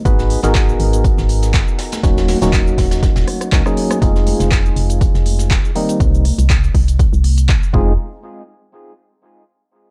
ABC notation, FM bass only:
X:1
M:4/4
L:1/16
Q:"Swing 16ths" 1/4=121
K:Cm
V:1 name="FM bass" clef=bass
A,,,2 z A,,,2 z A,,,2 z A,,,3 _G,,, z3 | E,,,2 z E,,,2 z E,,,2 z E,,, z2 _D,, z3 | F,,,2 z F,,,2 z F,,,2 z F,,,3 E,,, z3 | C,,2 z C,,2 z C,,2 z C,,3 B,,, z F,,,2 |
z16 |]